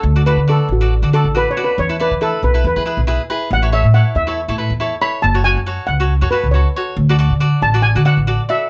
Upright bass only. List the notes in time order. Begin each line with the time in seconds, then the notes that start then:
0.03 D2
0.36 D3
0.69 A1
1.02 D3
1.24 A1
1.78 E2
2.11 E3
2.43 B1
2.64 E2
2.76 E3
2.97 B1
3.51 A1
3.83 A2
4.15 E2
4.48 A2
4.70 E2
5.24 F#1
5.57 F#2
5.89 C#2
6.22 F#2
6.43 C#2
6.97 D2
7.30 D3
7.62 A1
7.95 D3
8.17 A1